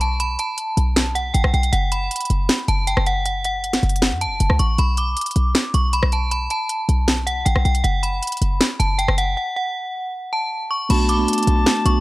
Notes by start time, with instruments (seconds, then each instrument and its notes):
Already playing: 808-style bass B1
0.01 synth bell A5, closed hi-hat
0.20 synth bell B5, closed hi-hat
0.39 synth bell A5, closed hi-hat
0.58 closed hi-hat
0.77 808-style bass B1, closed hi-hat
0.96 snare, closed hi-hat
1.15 synth bell F#5, closed hi-hat
1.34 808-style bass A1, synth bell G5, closed hi-hat
1.44 808-style bass B1, cross-stick
1.54 808-style bass B1, synth bell G5, closed hi-hat
1.63 closed hi-hat
1.73 808-style bass F#1, synth bell F#5, closed hi-hat
1.92 synth bell B5, closed hi-hat
2.11 closed hi-hat
2.16 closed hi-hat
2.21 closed hi-hat
2.25 closed hi-hat
2.30 808-style bass F#1, closed hi-hat
2.49 snare, closed hi-hat
2.68 808-style bass F#1, synth bell A5, closed hi-hat
2.87 synth bell G5, closed hi-hat
2.97 808-style bass F#1, cross-stick
3.06 synth bell F#5, closed hi-hat
3.26 synth bell F#5, closed hi-hat
3.44 synth bell F#5, closed hi-hat
3.64 closed hi-hat
3.73 snare, closed hi-hat
3.83 808-style bass F#1, closed hi-hat
3.89 closed hi-hat
3.96 closed hi-hat
4.02 snare, closed hi-hat
4.12 808-style bass F#2
4.21 synth bell A5, closed hi-hat
4.26 808-style bass F#1
4.40 808-style bass F#1, closed hi-hat
4.50 808-style bass C#2, cross-stick
4.59 808-style bass A1, synth bell C#6, closed hi-hat
4.78 808-style bass B1, synth bell B5, closed hi-hat
4.97 synth bell D6, closed hi-hat
5.17 closed hi-hat
5.21 closed hi-hat
5.26 closed hi-hat
5.31 closed hi-hat
5.36 808-style bass B1, closed hi-hat
5.55 snare, closed hi-hat
5.74 808-style bass B1, synth bell C#6, closed hi-hat
5.93 synth bell B5, closed hi-hat
6.03 808-style bass B1, cross-stick
6.12 synth bell A5, closed hi-hat
6.31 synth bell B5, closed hi-hat
6.50 synth bell A5, closed hi-hat
6.69 closed hi-hat
6.89 808-style bass B1, closed hi-hat
7.08 snare, closed hi-hat
7.27 synth bell F#5, closed hi-hat
7.45 808-style bass A1, synth bell G5, closed hi-hat
7.56 808-style bass B1, cross-stick
7.65 808-style bass B1, synth bell G5, closed hi-hat
7.75 closed hi-hat
7.84 808-style bass F#1, synth bell F#5, closed hi-hat
8.03 synth bell B5, closed hi-hat
8.23 closed hi-hat
8.27 closed hi-hat
8.32 closed hi-hat
8.37 closed hi-hat
8.42 808-style bass F#1, closed hi-hat
8.61 snare, closed hi-hat
8.80 808-style bass F#1, synth bell A5, closed hi-hat
8.98 synth bell G5, closed hi-hat
9.08 808-style bass F#1, cross-stick
9.18 synth bell F#5, closed hi-hat
9.37 synth bell F#5
9.56 synth bell F#5
10.33 synth bell A5
10.71 synth bell C#6
10.89 808-style bass B1, tine electric piano A3 B3 D4 F#4, flute A5, synth bell B5, closed hi-hat, crash
11.09 synth bell D6, closed hi-hat
11.17 tine electric piano A3 B3 D4 F#4
11.28 closed hi-hat
11.33 closed hi-hat
11.38 closed hi-hat
11.43 closed hi-hat
11.47 808-style bass B1, closed hi-hat
11.66 snare, closed hi-hat
11.84 808-style bass B1, tine electric piano A3 B3 D4 F#4, synth bell C#6, closed hi-hat